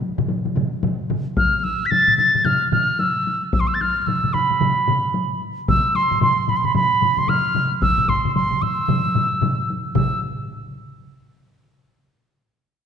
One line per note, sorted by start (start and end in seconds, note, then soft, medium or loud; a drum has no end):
0.02 taiko high medium
0.18 taiko low-mid loud
0.18 taiko mid medium
0.18 taiko high soft
0.28 taiko low-mid medium
0.28 taiko mid medium
0.28 taiko high medium
0.45 taiko low-mid medium
0.45 taiko mid medium
0.45 taiko high medium
0.56 taiko low-mid loud
0.56 taiko mid loud
0.56 taiko high medium
0.73 taiko high soft
0.83 taiko low-mid loud
0.83 taiko mid loud
0.83 taiko high medium
1.00 taiko high soft
1.10 taiko low-mid medium
1.10 taiko mid medium
1.10 taiko high soft
1.26 taiko high soft
1.37 1.65 F6 medium
1.37 taiko loud
1.37 taiko high medium
1.54 taiko high soft
1.63 1.87 E6 medium
1.63 taiko high soft
1.81 taiko high soft
1.85 1.92 B6 medium
1.90 2.17 A6 loud
1.90 taiko low-mid medium
1.90 taiko mid medium
1.90 taiko high medium
2.08 taiko low-mid medium
2.08 taiko mid medium
2.08 taiko high soft
2.17 2.46 A6 medium
2.17 taiko low-mid medium
2.17 taiko mid medium
2.17 taiko high medium
2.35 taiko low-mid medium
2.35 taiko mid medium
2.35 taiko high soft
2.45 2.70 F6 medium
2.45 taiko low-mid loud
2.45 taiko mid loud
2.45 taiko high medium
2.71 3.01 F6 medium
2.71 taiko low-mid medium
2.71 taiko mid loud
2.71 taiko high medium
2.89 taiko high soft
2.99 3.42 E6 medium
2.99 taiko high medium
3.16 taiko high soft
3.27 taiko high medium
3.43 taiko high soft
3.53 3.61 E6 medium
3.53 taiko loud
3.53 taiko high medium
3.60 3.68 C6 medium
3.67 3.75 E6 medium
3.67 taiko high soft
3.74 3.82 A6 medium
3.81 4.01 F6 medium
3.81 taiko high medium
3.98 4.08 F6 medium
3.98 taiko high soft
4.06 4.34 E6 medium
4.06 taiko low-mid medium
4.06 taiko mid medium
4.06 taiko high medium
4.24 taiko low-mid medium
4.24 taiko mid medium
4.24 taiko high soft
4.33 5.41 B5 medium
4.33 taiko low-mid medium
4.33 taiko mid medium
4.33 taiko high medium
4.50 taiko low-mid medium
4.50 taiko mid medium
4.50 taiko high soft
4.61 taiko low-mid loud
4.61 taiko mid loud
4.61 taiko high medium
4.88 taiko low-mid medium
4.88 taiko mid loud
5.04 taiko high soft
5.14 taiko high medium
5.32 taiko high soft
5.58 taiko high soft
5.68 5.97 E6 medium
5.68 taiko loud
5.68 taiko low-mid loud
5.68 taiko mid medium
5.68 taiko high medium
5.85 taiko high soft
5.95 6.21 C6 medium
5.95 taiko high soft
6.11 taiko low-mid medium
6.11 taiko mid medium
6.11 taiko high soft
6.21 6.50 C6 medium
6.21 taiko low-mid medium
6.21 taiko mid loud
6.21 taiko high medium
6.37 taiko high soft
6.48 6.58 B5 medium
6.48 taiko low-mid medium
6.48 taiko mid medium
6.48 taiko high medium
6.56 6.66 C6 medium
6.64 6.75 B5 medium
6.64 taiko low-mid medium
6.64 taiko mid medium
6.64 taiko high soft
6.74 7.19 B5 medium
6.74 taiko low-mid loud
6.74 taiko mid loud
6.74 taiko high medium
7.01 taiko low-mid medium
7.01 taiko mid medium
7.01 taiko high medium
7.17 7.30 C6 medium
7.17 taiko low-mid medium
7.17 taiko mid medium
7.17 taiko high soft
7.28 7.71 F6 medium
7.28 taiko low-mid loud
7.28 taiko mid loud
7.28 taiko high medium
7.46 taiko high soft
7.55 taiko low-mid loud
7.55 taiko mid medium
7.55 taiko high soft
7.72 taiko high soft
7.81 8.10 E6 loud
7.81 taiko loud
7.81 taiko low-mid medium
7.81 taiko mid medium
7.81 taiko high medium
7.98 taiko low-mid medium
7.98 taiko mid medium
7.98 taiko high soft
8.08 8.34 C6 medium
8.08 taiko medium
8.08 taiko low-mid medium
8.08 taiko mid medium
8.08 taiko high medium
8.25 taiko low-mid medium
8.25 taiko mid medium
8.25 taiko high soft
8.35 8.63 C6 medium
8.35 taiko low-mid medium
8.35 taiko mid medium
8.35 taiko high medium
8.51 taiko low-mid medium
8.51 taiko mid medium
8.51 taiko high soft
8.62 9.68 E6 medium
8.62 taiko low-mid medium
8.62 taiko mid medium
8.62 taiko high medium
8.80 taiko high soft
8.88 taiko low-mid loud
8.88 taiko mid loud
8.88 taiko high medium
9.06 taiko high soft
9.15 taiko low-mid medium
9.15 taiko mid loud
9.15 taiko high medium
9.33 taiko high soft
9.42 taiko low-mid loud
9.42 taiko mid loud
9.42 taiko high medium
9.60 taiko high soft
9.70 taiko high medium
9.86 taiko high soft
9.95 10.20 E6 medium
9.95 taiko medium
9.95 taiko low-mid loud
9.95 taiko mid loud
9.95 taiko high medium